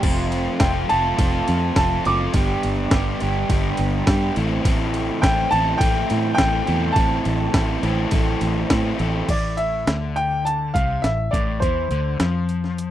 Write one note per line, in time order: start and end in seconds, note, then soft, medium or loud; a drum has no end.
0.02 0.47 F1 medium
0.02 0.58 F3 medium
0.02 0.59 A3 medium
0.02 0.59 C4 medium
0.02 0.59 F4 medium
0.02 0.59 A4 medium
0.02 kick loud
0.02 crash medium
0.32 ride medium
0.59 0.83 F1 medium
0.59 0.88 F3 medium
0.59 0.88 A3 medium
0.59 0.88 C4 medium
0.59 0.89 F4 medium
0.59 0.89 A4 medium
0.59 0.90 G5 medium
0.59 kick loud
0.59 snare loud
0.59 ride loud
0.89 1.13 F1 medium
0.89 1.16 F3 medium
0.89 1.18 A3 medium
0.89 1.17 C4 medium
0.89 1.17 F4 medium
0.89 1.18 A4 medium
0.89 1.75 A5 loud
0.89 ride medium
1.17 1.40 F1 medium
1.17 1.75 F3 medium
1.17 1.75 A3 loud
1.17 1.76 C4 medium
1.17 1.76 F4 medium
1.17 1.77 A4 loud
1.17 kick loud
1.17 ride loud
1.48 1.70 F2 medium
1.48 snare soft
1.48 ride medium
1.76 1.98 F1 loud
1.76 2.04 F3 medium
1.76 2.04 A3 medium
1.76 2.05 C4 medium
1.76 2.06 F4 medium
1.76 2.06 A4 medium
1.76 2.03 A5 medium
1.76 kick loud
1.76 snare loud
1.76 ride medium
2.05 2.27 F#1 medium
2.05 2.32 F3 medium
2.05 2.32 A3 medium
2.05 2.33 C4 medium
2.05 2.33 F4 loud
2.05 2.33 A4 medium
2.05 3.17 D6 loud
2.05 ride medium
2.34 2.56 G1 loud
2.34 2.91 G2 medium
2.34 2.91 D3 medium
2.34 2.93 G3 medium
2.34 2.92 B3 loud
2.34 2.93 D4 medium
2.34 2.94 G4 loud
2.34 kick loud
2.34 ride loud
2.63 2.86 G1 medium
2.63 ride medium
2.91 3.14 G1 medium
2.91 3.21 G2 medium
2.91 3.21 D3 medium
2.91 3.22 G3 medium
2.91 3.22 B3 medium
2.91 3.22 D4 medium
2.91 3.23 G4 loud
2.91 kick loud
2.91 snare loud
2.91 ride medium
3.20 3.43 G1 medium
3.20 3.49 G2 medium
3.20 3.50 D3 medium
3.20 3.50 G3 medium
3.20 3.50 B3 medium
3.20 3.51 D4 medium
3.20 3.51 G4 medium
3.20 ride medium
3.50 3.72 G1 medium
3.50 4.07 G2 medium
3.50 4.07 D3 medium
3.50 4.08 G3 medium
3.50 4.08 B3 loud
3.50 4.08 D4 loud
3.50 4.09 G4 loud
3.50 kick loud
3.50 ride medium
3.77 4.01 G1 medium
3.77 ride medium
4.07 4.29 G2 loud
4.07 4.35 G2 medium
4.07 4.35 D3 medium
4.07 4.35 G3 medium
4.07 4.35 B3 medium
4.07 4.35 D4 medium
4.07 4.36 G4 loud
4.07 kick loud
4.07 snare loud
4.07 ride loud
4.36 4.59 A1 medium
4.36 4.64 A2 loud
4.36 4.65 E3 medium
4.36 4.65 A3 medium
4.36 4.65 C4 loud
4.36 4.65 E4 loud
4.36 4.66 A4 loud
4.36 ride medium
4.65 5.09 A1 loud
4.65 5.23 A2 medium
4.65 5.23 E3 medium
4.65 5.22 A3 loud
4.65 5.23 C4 medium
4.65 5.24 E4 medium
4.65 5.24 A4 medium
4.65 kick loud
4.65 ride loud
4.94 ride medium
5.22 5.45 A1 medium
5.22 5.52 A2 medium
5.22 5.53 E3 medium
5.22 5.53 A3 medium
5.22 5.52 C4 loud
5.22 5.53 E4 medium
5.22 5.54 A4 medium
5.22 5.52 G5 loud
5.22 kick loud
5.22 snare loud
5.22 ride loud
5.51 5.74 A1 medium
5.51 5.81 A2 medium
5.51 5.81 E3 medium
5.51 5.80 A3 medium
5.51 5.82 C4 loud
5.51 5.82 E4 medium
5.51 5.82 A4 medium
5.51 5.78 A5 loud
5.51 ride medium
5.78 6.03 A1 medium
5.78 6.37 A2 medium
5.78 6.37 A3 loud
5.78 6.33 G5 loud
5.78 kick loud
5.78 ride loud
5.82 6.38 E3 medium
5.82 6.39 C4 medium
5.82 6.39 E4 medium
5.82 6.39 A4 medium
6.10 6.32 A2 medium
6.10 snare soft
6.10 ride medium
6.35 6.60 A1 loud
6.35 6.67 A2 medium
6.35 6.68 E3 medium
6.35 6.65 A3 medium
6.35 6.96 G5 loud
6.35 kick loud
6.35 snare loud
6.35 ride medium
6.39 6.68 C4 loud
6.39 6.68 E4 medium
6.39 6.68 A4 medium
6.66 6.90 E2 medium
6.66 6.96 A2 medium
6.66 6.97 E3 medium
6.66 6.95 A3 medium
6.66 6.97 C4 medium
6.66 6.97 E4 medium
6.66 6.98 A4 medium
6.66 ride medium
6.92 7.52 A3 medium
6.92 8.64 A5 medium
6.92 kick loud
6.92 ride medium
6.96 7.18 A1 loud
6.96 7.53 A2 medium
6.96 7.53 E3 medium
6.96 7.54 C4 medium
6.96 7.54 E4 medium
6.96 7.55 A4 medium
7.25 7.48 A1 medium
7.25 ride medium
7.54 7.76 A1 medium
7.54 7.81 A2 medium
7.54 7.82 E3 medium
7.54 7.82 A3 medium
7.54 7.82 C4 loud
7.54 7.82 E4 medium
7.54 7.83 A4 loud
7.54 kick loud
7.54 snare loud
7.54 ride loud
7.83 8.05 A1 medium
7.83 8.11 A2 medium
7.83 8.11 E3 medium
7.83 8.11 A3 medium
7.83 8.12 C4 medium
7.83 8.12 E4 loud
7.83 8.13 A4 loud
7.83 ride medium
8.11 8.34 A1 medium
8.11 8.69 A2 medium
8.11 8.69 E3 medium
8.11 8.69 A3 loud
8.11 8.70 C4 medium
8.11 8.70 E4 medium
8.11 8.71 A4 loud
8.11 kick loud
8.11 ride medium
8.41 8.63 A1 medium
8.41 snare soft
8.41 ride medium
8.70 8.92 A2 loud
8.70 8.98 A2 medium
8.70 8.99 E3 medium
8.70 8.99 A3 medium
8.70 9.00 C4 medium
8.70 9.00 E4 medium
8.70 9.00 A4 medium
8.70 kick loud
8.70 snare loud
8.70 ride loud
8.99 9.22 A1 medium
8.99 9.27 A2 medium
8.99 9.27 E3 medium
8.99 9.27 A3 medium
8.99 9.27 C4 medium
8.99 9.27 E4 medium
8.99 9.28 A4 loud
8.99 ride medium
9.29 9.83 A1 medium
9.29 9.86 A2 medium
9.29 9.56 D5 medium
9.29 kick medium
9.29 closed hi-hat medium
9.29 crash medium
9.57 10.12 E5 medium
9.57 closed hi-hat medium
9.87 10.70 D2 medium
9.87 10.74 D3 medium
9.87 snare loud
9.87 closed hi-hat medium
10.16 10.43 G5 medium
10.16 closed hi-hat medium
10.45 10.75 A5 medium
10.45 closed hi-hat medium
10.74 11.02 C2 medium
10.74 11.03 C3 medium
10.74 11.04 F5 medium
10.74 kick medium
10.74 closed hi-hat medium
11.02 11.31 A1 medium
11.02 11.27 A2 medium
11.02 11.33 E5 medium
11.02 snare medium
11.02 closed hi-hat medium
11.31 11.60 A1 medium
11.31 11.61 A2 medium
11.31 11.59 D5 medium
11.31 kick medium
11.31 closed hi-hat medium
11.60 11.89 E2 medium
11.60 11.90 E3 medium
11.60 12.91 C5 medium
11.60 kick medium
11.60 closed hi-hat medium
11.91 12.18 D2 medium
11.91 12.20 D3 medium
11.91 closed hi-hat medium
12.20 12.91 F2 medium
12.20 12.91 F3 medium
12.20 snare medium
12.20 closed hi-hat medium
12.49 closed hi-hat medium
12.64 snare soft
12.78 closed hi-hat medium